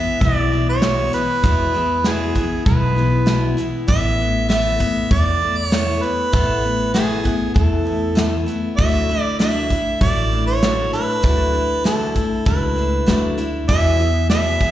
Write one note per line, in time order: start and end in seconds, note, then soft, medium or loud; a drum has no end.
0.00 0.21 E3 soft
0.00 0.22 G#3 soft
0.00 0.22 B3 soft
0.00 0.21 E4 medium
0.00 0.23 E5 medium
0.21 1.08 B1 medium
0.21 0.52 E3 soft
0.21 0.53 G#3 medium
0.21 0.51 B3 medium
0.21 0.67 D5 medium
0.21 kick medium
0.21 closed hi-hat medium
0.25 0.51 E4 medium
0.52 0.81 E3 soft
0.52 0.82 G#3 soft
0.52 0.83 B3 soft
0.52 0.82 E4 soft
0.69 1.11 C#5 medium
0.82 1.13 E2 medium
0.82 1.13 B2 medium
0.82 1.13 E3 medium
0.82 1.14 G#3 medium
0.82 1.13 B3 medium
0.82 1.12 E4 medium
0.82 snare loud
0.82 closed hi-hat medium
1.13 1.43 E3 soft
1.13 1.43 G#3 soft
1.13 1.44 B3 soft
1.13 1.44 E4 soft
1.13 2.08 B4 medium
1.13 closed hi-hat medium
1.43 2.31 E2 medium
1.43 1.74 E2 medium
1.43 1.75 B2 medium
1.43 1.75 E3 medium
1.43 1.74 G#3 medium
1.43 1.73 B3 medium
1.43 1.72 E4 medium
1.43 kick loud
1.43 closed hi-hat medium
1.74 2.05 E3 soft
1.74 2.05 G#3 soft
1.74 2.05 B3 soft
1.74 2.05 E4 soft
2.04 2.36 E2 medium
2.04 2.36 B2 medium
2.04 2.36 E3 medium
2.04 2.35 G#3 medium
2.04 2.35 B3 medium
2.04 2.34 E4 medium
2.04 2.65 G#4 medium
2.04 snare medium
2.04 closed hi-hat medium
2.35 2.65 E3 soft
2.35 2.66 G#3 soft
2.35 2.66 B3 medium
2.35 2.66 E4 medium
2.35 kick medium
2.35 closed hi-hat medium
2.66 3.53 B1 medium
2.66 2.97 E3 medium
2.66 2.97 G#3 medium
2.66 2.97 B3 medium
2.66 2.95 E4 medium
2.66 3.54 B4 medium
2.66 kick loud
2.66 closed hi-hat medium
2.97 3.26 E3 soft
2.97 3.26 G#3 soft
2.97 3.27 B3 soft
2.97 3.27 E4 soft
3.26 3.57 E2 medium
3.26 3.58 B2 medium
3.26 3.58 E3 medium
3.26 3.58 G#3 medium
3.26 3.57 B3 medium
3.26 3.56 E4 medium
3.26 snare loud
3.26 closed hi-hat medium
3.57 3.87 E3 soft
3.57 3.89 G#3 soft
3.57 3.88 B3 soft
3.57 3.88 E4 medium
3.57 closed hi-hat medium
3.88 4.75 A1 medium
3.88 4.19 A2 medium
3.88 4.19 E3 medium
3.88 4.19 A3 medium
3.88 4.19 B3 medium
3.88 4.17 E4 medium
3.88 4.46 E5 loud
3.88 kick loud
3.88 closed hi-hat medium
4.19 4.48 A3 soft
4.19 4.49 B3 soft
4.19 4.49 E4 medium
4.49 4.80 A2 medium
4.49 4.80 E3 medium
4.49 4.80 A3 medium
4.49 4.79 B3 medium
4.49 4.78 E4 medium
4.49 5.07 E5 medium
4.49 snare medium
4.49 closed hi-hat medium
4.79 5.10 A3 soft
4.79 5.11 B3 medium
4.79 5.10 E4 medium
4.79 kick medium
4.79 closed hi-hat medium
5.11 5.98 E2 medium
5.11 5.42 E3 soft
5.11 5.42 A3 medium
5.11 5.42 B3 medium
5.11 5.40 E4 medium
5.11 5.59 D5 medium
5.11 kick loud
5.11 closed hi-hat medium
5.41 5.72 A3 soft
5.41 5.72 B3 soft
5.41 5.72 E4 medium
5.57 6.04 C#5 medium
5.72 6.03 A2 medium
5.72 6.03 E3 medium
5.72 6.03 A3 medium
5.72 6.02 B3 medium
5.72 6.01 E4 medium
5.72 snare loud
5.72 closed hi-hat medium
6.02 6.32 A3 soft
6.02 6.32 B3 soft
6.02 6.33 E4 soft
6.02 6.93 B4 medium
6.02 closed hi-hat medium
6.32 7.20 A1 medium
6.32 6.64 A2 medium
6.32 6.64 E3 medium
6.32 6.64 A3 medium
6.32 6.63 B3 medium
6.32 6.62 E4 medium
6.32 kick loud
6.32 closed hi-hat medium
6.63 6.93 A3 soft
6.63 6.94 B3 soft
6.63 6.94 E4 soft
6.94 7.25 A2 medium
6.94 7.25 E3 medium
6.94 7.25 A3 medium
6.94 7.24 B3 medium
6.94 7.22 E4 medium
6.94 7.52 G#4 medium
6.94 snare medium
6.94 closed hi-hat medium
7.24 7.54 A3 soft
7.24 7.55 B3 soft
7.24 7.55 E4 medium
7.24 kick medium
7.24 closed hi-hat medium
7.54 8.43 E2 medium
7.54 7.86 E3 soft
7.54 7.86 A3 soft
7.54 7.85 B3 medium
7.54 7.84 E4 medium
7.54 8.43 A4 medium
7.54 kick loud
7.54 closed hi-hat medium
7.85 8.15 A3 soft
7.85 8.16 B3 soft
7.85 8.16 E4 soft
8.15 8.47 A2 medium
8.15 8.47 E3 medium
8.15 8.48 A3 medium
8.15 8.46 B3 medium
8.15 8.45 E4 medium
8.15 snare loud
8.15 closed hi-hat medium
8.46 8.78 A3 soft
8.46 8.78 B3 medium
8.46 8.78 E4 medium
8.46 closed hi-hat medium
8.77 9.65 D2 medium
8.77 9.09 D3 medium
8.77 9.09 F#3 medium
8.77 9.10 A3 medium
8.77 9.09 D4 medium
8.77 9.08 E4 medium
8.77 9.22 E5 loud
8.77 kick loud
8.77 closed hi-hat medium
9.09 9.39 A3 soft
9.09 9.39 D4 soft
9.09 9.40 E4 medium
9.22 9.35 D5 loud
9.39 9.70 D3 medium
9.39 9.70 F#3 medium
9.39 9.71 A3 medium
9.39 9.71 D4 medium
9.39 9.70 E4 medium
9.39 9.97 E5 medium
9.39 snare medium
9.39 closed hi-hat medium
9.70 10.01 A3 soft
9.70 10.02 D4 soft
9.70 10.01 E4 medium
9.70 kick medium
9.70 closed hi-hat medium
10.01 10.88 A1 medium
10.01 10.32 F#3 medium
10.01 10.32 A3 medium
10.01 10.32 D4 medium
10.01 10.30 E4 medium
10.01 10.44 D5 medium
10.01 kick loud
10.01 closed hi-hat medium
10.32 10.62 A3 soft
10.32 10.62 D4 soft
10.32 10.62 E4 soft
10.47 10.90 C#5 medium
10.63 10.93 D3 medium
10.63 10.93 F#3 medium
10.63 10.93 A3 medium
10.63 10.93 D4 medium
10.63 10.91 E4 medium
10.63 snare loud
10.63 closed hi-hat medium
10.93 11.22 A3 soft
10.93 11.23 D4 soft
10.93 11.23 E4 soft
10.93 11.81 B4 medium
10.93 closed hi-hat medium
11.23 12.11 D2 medium
11.23 11.54 D3 medium
11.23 11.54 F#3 medium
11.23 11.54 A3 medium
11.23 11.53 D4 medium
11.23 11.52 E4 medium
11.23 kick loud
11.23 closed hi-hat medium
11.53 11.84 A3 soft
11.53 11.85 D4 soft
11.53 11.84 E4 soft
11.84 12.15 D3 medium
11.84 12.16 F#3 medium
11.84 12.16 A3 medium
11.84 12.14 D4 medium
11.84 12.13 E4 medium
11.84 12.43 A4 medium
11.84 snare medium
11.84 closed hi-hat medium
12.14 12.45 A3 soft
12.14 12.46 D4 soft
12.14 12.46 E4 soft
12.14 kick medium
12.14 closed hi-hat medium
12.45 12.98 C#2 medium
12.45 12.76 F#3 medium
12.45 12.77 A3 medium
12.45 12.77 D4 medium
12.45 12.75 E4 medium
12.45 13.34 B4 medium
12.45 kick loud
12.45 closed hi-hat medium
12.76 13.07 A3 soft
12.76 13.07 D4 soft
12.76 13.07 E4 soft
13.06 13.60 D2 medium
13.06 13.38 D3 medium
13.06 13.38 F#3 medium
13.06 13.38 A3 medium
13.06 13.38 D4 medium
13.06 13.36 E4 medium
13.06 snare loud
13.06 closed hi-hat medium
13.38 13.69 A3 soft
13.38 13.69 D4 medium
13.38 13.68 E4 medium
13.38 closed hi-hat medium
13.69 13.99 E2 medium
13.69 14.56 E2 medium
13.69 13.99 B2 medium
13.69 14.00 E3 medium
13.69 14.00 B3 medium
13.69 13.99 E4 medium
13.69 13.98 G#4 medium
13.69 14.26 E5 loud
13.69 kick loud
13.69 closed hi-hat medium
13.99 14.30 E3 soft
13.99 14.30 B3 soft
13.99 14.30 E4 soft
13.99 14.30 G#4 medium
14.30 14.61 E2 medium
14.30 14.61 B2 medium
14.30 14.61 E3 medium
14.30 14.61 B3 medium
14.30 14.61 E4 medium
14.30 14.60 G#4 medium
14.30 14.71 E5 medium
14.30 snare loud
14.30 closed hi-hat soft
14.60 14.71 E3 soft
14.60 14.71 B3 soft
14.60 14.71 E4 soft
14.60 14.71 G#4 medium
14.60 kick medium
14.60 closed hi-hat medium